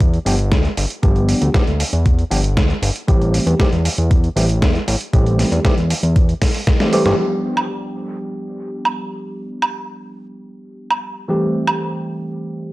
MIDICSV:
0, 0, Header, 1, 4, 480
1, 0, Start_track
1, 0, Tempo, 512821
1, 965, Time_signature, 4, 2, 24, 8
1, 11913, End_track
2, 0, Start_track
2, 0, Title_t, "Tine electric piano"
2, 0, Program_c, 0, 4
2, 240, Note_on_c, 0, 53, 83
2, 243, Note_on_c, 0, 55, 77
2, 245, Note_on_c, 0, 59, 75
2, 248, Note_on_c, 0, 62, 78
2, 249, Note_on_c, 0, 67, 92
2, 319, Note_off_c, 0, 53, 0
2, 320, Note_off_c, 0, 55, 0
2, 321, Note_off_c, 0, 59, 0
2, 323, Note_off_c, 0, 62, 0
2, 324, Note_off_c, 0, 67, 0
2, 958, Note_on_c, 0, 53, 80
2, 959, Note_on_c, 0, 55, 75
2, 963, Note_on_c, 0, 59, 76
2, 964, Note_on_c, 0, 62, 74
2, 967, Note_on_c, 0, 67, 90
2, 1413, Note_off_c, 0, 53, 0
2, 1414, Note_off_c, 0, 55, 0
2, 1416, Note_off_c, 0, 59, 0
2, 1416, Note_off_c, 0, 62, 0
2, 1417, Note_off_c, 0, 67, 0
2, 1438, Note_on_c, 0, 53, 84
2, 1441, Note_on_c, 0, 55, 72
2, 1443, Note_on_c, 0, 59, 76
2, 1444, Note_on_c, 0, 62, 73
2, 1447, Note_on_c, 0, 67, 87
2, 1518, Note_off_c, 0, 53, 0
2, 1520, Note_off_c, 0, 55, 0
2, 1521, Note_off_c, 0, 59, 0
2, 1521, Note_off_c, 0, 62, 0
2, 1523, Note_off_c, 0, 67, 0
2, 2158, Note_on_c, 0, 53, 81
2, 2160, Note_on_c, 0, 55, 79
2, 2161, Note_on_c, 0, 59, 74
2, 2164, Note_on_c, 0, 62, 79
2, 2167, Note_on_c, 0, 67, 95
2, 2238, Note_off_c, 0, 53, 0
2, 2239, Note_off_c, 0, 55, 0
2, 2239, Note_off_c, 0, 59, 0
2, 2241, Note_off_c, 0, 62, 0
2, 2243, Note_off_c, 0, 67, 0
2, 2879, Note_on_c, 0, 52, 83
2, 2881, Note_on_c, 0, 55, 72
2, 2884, Note_on_c, 0, 57, 74
2, 2885, Note_on_c, 0, 60, 72
2, 2887, Note_on_c, 0, 67, 87
2, 3333, Note_off_c, 0, 52, 0
2, 3334, Note_off_c, 0, 55, 0
2, 3336, Note_off_c, 0, 57, 0
2, 3336, Note_off_c, 0, 60, 0
2, 3338, Note_off_c, 0, 67, 0
2, 3361, Note_on_c, 0, 52, 85
2, 3362, Note_on_c, 0, 55, 77
2, 3364, Note_on_c, 0, 57, 76
2, 3368, Note_on_c, 0, 60, 74
2, 3370, Note_on_c, 0, 67, 93
2, 3439, Note_off_c, 0, 52, 0
2, 3440, Note_off_c, 0, 55, 0
2, 3441, Note_off_c, 0, 57, 0
2, 3443, Note_off_c, 0, 60, 0
2, 3444, Note_off_c, 0, 67, 0
2, 4079, Note_on_c, 0, 52, 86
2, 4082, Note_on_c, 0, 55, 76
2, 4084, Note_on_c, 0, 57, 80
2, 4087, Note_on_c, 0, 60, 79
2, 4088, Note_on_c, 0, 67, 93
2, 4159, Note_off_c, 0, 52, 0
2, 4160, Note_off_c, 0, 55, 0
2, 4161, Note_off_c, 0, 57, 0
2, 4162, Note_off_c, 0, 60, 0
2, 4163, Note_off_c, 0, 67, 0
2, 4800, Note_on_c, 0, 52, 80
2, 4802, Note_on_c, 0, 55, 76
2, 4806, Note_on_c, 0, 57, 76
2, 4807, Note_on_c, 0, 60, 75
2, 4811, Note_on_c, 0, 67, 93
2, 5254, Note_off_c, 0, 52, 0
2, 5255, Note_off_c, 0, 55, 0
2, 5257, Note_off_c, 0, 57, 0
2, 5257, Note_off_c, 0, 60, 0
2, 5259, Note_off_c, 0, 67, 0
2, 5280, Note_on_c, 0, 52, 84
2, 5285, Note_on_c, 0, 55, 77
2, 5287, Note_on_c, 0, 57, 79
2, 5289, Note_on_c, 0, 60, 76
2, 5290, Note_on_c, 0, 67, 93
2, 5359, Note_off_c, 0, 52, 0
2, 5361, Note_off_c, 0, 55, 0
2, 5362, Note_off_c, 0, 57, 0
2, 5363, Note_off_c, 0, 60, 0
2, 5364, Note_off_c, 0, 67, 0
2, 6361, Note_on_c, 0, 52, 76
2, 6365, Note_on_c, 0, 55, 71
2, 6366, Note_on_c, 0, 57, 72
2, 6369, Note_on_c, 0, 60, 70
2, 6371, Note_on_c, 0, 67, 84
2, 6465, Note_off_c, 0, 52, 0
2, 6467, Note_off_c, 0, 55, 0
2, 6467, Note_off_c, 0, 57, 0
2, 6469, Note_off_c, 0, 60, 0
2, 6470, Note_off_c, 0, 67, 0
2, 6483, Note_on_c, 0, 52, 85
2, 6484, Note_on_c, 0, 55, 76
2, 6487, Note_on_c, 0, 57, 78
2, 6488, Note_on_c, 0, 60, 78
2, 6490, Note_on_c, 0, 67, 92
2, 6576, Note_off_c, 0, 52, 0
2, 6576, Note_off_c, 0, 55, 0
2, 6578, Note_off_c, 0, 57, 0
2, 6578, Note_off_c, 0, 60, 0
2, 6579, Note_off_c, 0, 67, 0
2, 6603, Note_on_c, 0, 52, 91
2, 6606, Note_on_c, 0, 55, 84
2, 6609, Note_on_c, 0, 57, 86
2, 6609, Note_on_c, 0, 60, 83
2, 6612, Note_on_c, 0, 67, 101
2, 6680, Note_off_c, 0, 52, 0
2, 6682, Note_off_c, 0, 55, 0
2, 6683, Note_off_c, 0, 57, 0
2, 6683, Note_off_c, 0, 60, 0
2, 6685, Note_off_c, 0, 67, 0
2, 6718, Note_on_c, 0, 53, 64
2, 6723, Note_on_c, 0, 55, 61
2, 6727, Note_on_c, 0, 59, 59
2, 6732, Note_on_c, 0, 62, 60
2, 6737, Note_on_c, 0, 67, 74
2, 10533, Note_off_c, 0, 53, 0
2, 10536, Note_off_c, 0, 55, 0
2, 10538, Note_off_c, 0, 59, 0
2, 10540, Note_off_c, 0, 62, 0
2, 10543, Note_off_c, 0, 67, 0
2, 10560, Note_on_c, 0, 52, 71
2, 10563, Note_on_c, 0, 55, 62
2, 10568, Note_on_c, 0, 57, 66
2, 10571, Note_on_c, 0, 60, 62
2, 10577, Note_on_c, 0, 67, 77
2, 11913, Note_off_c, 0, 52, 0
2, 11913, Note_off_c, 0, 55, 0
2, 11913, Note_off_c, 0, 57, 0
2, 11913, Note_off_c, 0, 60, 0
2, 11913, Note_off_c, 0, 67, 0
2, 11913, End_track
3, 0, Start_track
3, 0, Title_t, "Analog synth bass"
3, 0, Program_c, 1, 38
3, 0, Note_on_c, 1, 40, 93
3, 177, Note_off_c, 1, 40, 0
3, 244, Note_on_c, 1, 31, 88
3, 486, Note_on_c, 1, 38, 88
3, 500, Note_off_c, 1, 31, 0
3, 640, Note_off_c, 1, 38, 0
3, 727, Note_on_c, 1, 31, 87
3, 803, Note_off_c, 1, 31, 0
3, 966, Note_on_c, 1, 31, 97
3, 1257, Note_off_c, 1, 31, 0
3, 1328, Note_on_c, 1, 38, 104
3, 1403, Note_off_c, 1, 38, 0
3, 1566, Note_on_c, 1, 38, 78
3, 1720, Note_off_c, 1, 38, 0
3, 1806, Note_on_c, 1, 40, 91
3, 2097, Note_off_c, 1, 40, 0
3, 2164, Note_on_c, 1, 31, 89
3, 2407, Note_on_c, 1, 38, 90
3, 2421, Note_off_c, 1, 31, 0
3, 2561, Note_off_c, 1, 38, 0
3, 2642, Note_on_c, 1, 31, 90
3, 2721, Note_off_c, 1, 31, 0
3, 2886, Note_on_c, 1, 33, 95
3, 3177, Note_off_c, 1, 33, 0
3, 3244, Note_on_c, 1, 40, 104
3, 3322, Note_off_c, 1, 40, 0
3, 3486, Note_on_c, 1, 40, 81
3, 3639, Note_off_c, 1, 40, 0
3, 3727, Note_on_c, 1, 40, 91
3, 4018, Note_off_c, 1, 40, 0
3, 4084, Note_on_c, 1, 33, 92
3, 4326, Note_on_c, 1, 40, 86
3, 4340, Note_off_c, 1, 33, 0
3, 4480, Note_off_c, 1, 40, 0
3, 4565, Note_on_c, 1, 33, 92
3, 4643, Note_off_c, 1, 33, 0
3, 4806, Note_on_c, 1, 33, 97
3, 5097, Note_off_c, 1, 33, 0
3, 5165, Note_on_c, 1, 40, 104
3, 5242, Note_off_c, 1, 40, 0
3, 5404, Note_on_c, 1, 40, 81
3, 5559, Note_off_c, 1, 40, 0
3, 5644, Note_on_c, 1, 40, 90
3, 5936, Note_off_c, 1, 40, 0
3, 6605, Note_on_c, 1, 31, 97
3, 6682, Note_off_c, 1, 31, 0
3, 11913, End_track
4, 0, Start_track
4, 0, Title_t, "Drums"
4, 4, Note_on_c, 9, 42, 49
4, 5, Note_on_c, 9, 36, 113
4, 97, Note_off_c, 9, 42, 0
4, 99, Note_off_c, 9, 36, 0
4, 126, Note_on_c, 9, 42, 23
4, 220, Note_off_c, 9, 42, 0
4, 246, Note_on_c, 9, 46, 101
4, 340, Note_off_c, 9, 46, 0
4, 365, Note_on_c, 9, 42, 47
4, 459, Note_off_c, 9, 42, 0
4, 483, Note_on_c, 9, 38, 108
4, 484, Note_on_c, 9, 42, 47
4, 485, Note_on_c, 9, 36, 112
4, 577, Note_off_c, 9, 38, 0
4, 578, Note_off_c, 9, 42, 0
4, 579, Note_off_c, 9, 36, 0
4, 605, Note_on_c, 9, 42, 23
4, 699, Note_off_c, 9, 42, 0
4, 724, Note_on_c, 9, 46, 98
4, 818, Note_off_c, 9, 46, 0
4, 845, Note_on_c, 9, 42, 50
4, 939, Note_off_c, 9, 42, 0
4, 964, Note_on_c, 9, 42, 48
4, 966, Note_on_c, 9, 36, 107
4, 1058, Note_off_c, 9, 42, 0
4, 1059, Note_off_c, 9, 36, 0
4, 1084, Note_on_c, 9, 42, 24
4, 1177, Note_off_c, 9, 42, 0
4, 1204, Note_on_c, 9, 46, 89
4, 1298, Note_off_c, 9, 46, 0
4, 1326, Note_on_c, 9, 42, 50
4, 1419, Note_off_c, 9, 42, 0
4, 1445, Note_on_c, 9, 38, 107
4, 1446, Note_on_c, 9, 36, 111
4, 1446, Note_on_c, 9, 42, 48
4, 1538, Note_off_c, 9, 38, 0
4, 1539, Note_off_c, 9, 36, 0
4, 1539, Note_off_c, 9, 42, 0
4, 1566, Note_on_c, 9, 42, 26
4, 1660, Note_off_c, 9, 42, 0
4, 1685, Note_on_c, 9, 46, 99
4, 1779, Note_off_c, 9, 46, 0
4, 1806, Note_on_c, 9, 42, 48
4, 1900, Note_off_c, 9, 42, 0
4, 1925, Note_on_c, 9, 42, 50
4, 1926, Note_on_c, 9, 36, 105
4, 2018, Note_off_c, 9, 42, 0
4, 2019, Note_off_c, 9, 36, 0
4, 2046, Note_on_c, 9, 42, 24
4, 2139, Note_off_c, 9, 42, 0
4, 2166, Note_on_c, 9, 46, 95
4, 2259, Note_off_c, 9, 46, 0
4, 2286, Note_on_c, 9, 42, 51
4, 2379, Note_off_c, 9, 42, 0
4, 2406, Note_on_c, 9, 36, 110
4, 2406, Note_on_c, 9, 38, 111
4, 2407, Note_on_c, 9, 42, 50
4, 2499, Note_off_c, 9, 38, 0
4, 2500, Note_off_c, 9, 36, 0
4, 2500, Note_off_c, 9, 42, 0
4, 2527, Note_on_c, 9, 42, 25
4, 2621, Note_off_c, 9, 42, 0
4, 2645, Note_on_c, 9, 46, 93
4, 2739, Note_off_c, 9, 46, 0
4, 2768, Note_on_c, 9, 42, 51
4, 2861, Note_off_c, 9, 42, 0
4, 2886, Note_on_c, 9, 36, 108
4, 2887, Note_on_c, 9, 42, 53
4, 2980, Note_off_c, 9, 36, 0
4, 2981, Note_off_c, 9, 42, 0
4, 3009, Note_on_c, 9, 42, 26
4, 3102, Note_off_c, 9, 42, 0
4, 3127, Note_on_c, 9, 46, 89
4, 3220, Note_off_c, 9, 46, 0
4, 3248, Note_on_c, 9, 42, 50
4, 3342, Note_off_c, 9, 42, 0
4, 3366, Note_on_c, 9, 36, 107
4, 3366, Note_on_c, 9, 38, 112
4, 3367, Note_on_c, 9, 42, 48
4, 3460, Note_off_c, 9, 36, 0
4, 3460, Note_off_c, 9, 38, 0
4, 3461, Note_off_c, 9, 42, 0
4, 3487, Note_on_c, 9, 42, 27
4, 3580, Note_off_c, 9, 42, 0
4, 3606, Note_on_c, 9, 46, 100
4, 3700, Note_off_c, 9, 46, 0
4, 3726, Note_on_c, 9, 42, 50
4, 3819, Note_off_c, 9, 42, 0
4, 3846, Note_on_c, 9, 36, 104
4, 3846, Note_on_c, 9, 42, 51
4, 3939, Note_off_c, 9, 42, 0
4, 3940, Note_off_c, 9, 36, 0
4, 3967, Note_on_c, 9, 42, 26
4, 4060, Note_off_c, 9, 42, 0
4, 4087, Note_on_c, 9, 46, 99
4, 4181, Note_off_c, 9, 46, 0
4, 4207, Note_on_c, 9, 42, 55
4, 4300, Note_off_c, 9, 42, 0
4, 4326, Note_on_c, 9, 36, 108
4, 4326, Note_on_c, 9, 38, 116
4, 4327, Note_on_c, 9, 42, 54
4, 4420, Note_off_c, 9, 36, 0
4, 4420, Note_off_c, 9, 38, 0
4, 4421, Note_off_c, 9, 42, 0
4, 4449, Note_on_c, 9, 42, 25
4, 4542, Note_off_c, 9, 42, 0
4, 4566, Note_on_c, 9, 46, 92
4, 4660, Note_off_c, 9, 46, 0
4, 4687, Note_on_c, 9, 42, 54
4, 4780, Note_off_c, 9, 42, 0
4, 4806, Note_on_c, 9, 36, 108
4, 4807, Note_on_c, 9, 42, 54
4, 4899, Note_off_c, 9, 36, 0
4, 4900, Note_off_c, 9, 42, 0
4, 4927, Note_on_c, 9, 42, 26
4, 5021, Note_off_c, 9, 42, 0
4, 5047, Note_on_c, 9, 38, 34
4, 5048, Note_on_c, 9, 46, 95
4, 5140, Note_off_c, 9, 38, 0
4, 5141, Note_off_c, 9, 46, 0
4, 5169, Note_on_c, 9, 42, 54
4, 5262, Note_off_c, 9, 42, 0
4, 5285, Note_on_c, 9, 38, 110
4, 5286, Note_on_c, 9, 36, 108
4, 5286, Note_on_c, 9, 42, 50
4, 5379, Note_off_c, 9, 36, 0
4, 5379, Note_off_c, 9, 38, 0
4, 5380, Note_off_c, 9, 42, 0
4, 5407, Note_on_c, 9, 42, 27
4, 5500, Note_off_c, 9, 42, 0
4, 5526, Note_on_c, 9, 46, 100
4, 5620, Note_off_c, 9, 46, 0
4, 5647, Note_on_c, 9, 42, 51
4, 5740, Note_off_c, 9, 42, 0
4, 5765, Note_on_c, 9, 42, 54
4, 5766, Note_on_c, 9, 36, 109
4, 5859, Note_off_c, 9, 36, 0
4, 5859, Note_off_c, 9, 42, 0
4, 5887, Note_on_c, 9, 42, 27
4, 5980, Note_off_c, 9, 42, 0
4, 6005, Note_on_c, 9, 38, 61
4, 6005, Note_on_c, 9, 46, 98
4, 6006, Note_on_c, 9, 36, 60
4, 6099, Note_off_c, 9, 38, 0
4, 6099, Note_off_c, 9, 46, 0
4, 6100, Note_off_c, 9, 36, 0
4, 6126, Note_on_c, 9, 46, 60
4, 6219, Note_off_c, 9, 46, 0
4, 6245, Note_on_c, 9, 38, 80
4, 6245, Note_on_c, 9, 42, 53
4, 6246, Note_on_c, 9, 36, 114
4, 6338, Note_off_c, 9, 38, 0
4, 6338, Note_off_c, 9, 42, 0
4, 6339, Note_off_c, 9, 36, 0
4, 6367, Note_on_c, 9, 38, 71
4, 6367, Note_on_c, 9, 42, 27
4, 6460, Note_off_c, 9, 38, 0
4, 6460, Note_off_c, 9, 42, 0
4, 6484, Note_on_c, 9, 46, 98
4, 6577, Note_off_c, 9, 46, 0
4, 6605, Note_on_c, 9, 38, 86
4, 6605, Note_on_c, 9, 42, 56
4, 6699, Note_off_c, 9, 38, 0
4, 6699, Note_off_c, 9, 42, 0
4, 7085, Note_on_c, 9, 76, 69
4, 7179, Note_off_c, 9, 76, 0
4, 8285, Note_on_c, 9, 76, 58
4, 8379, Note_off_c, 9, 76, 0
4, 9007, Note_on_c, 9, 76, 67
4, 9100, Note_off_c, 9, 76, 0
4, 10207, Note_on_c, 9, 76, 56
4, 10301, Note_off_c, 9, 76, 0
4, 10927, Note_on_c, 9, 76, 69
4, 11021, Note_off_c, 9, 76, 0
4, 11913, End_track
0, 0, End_of_file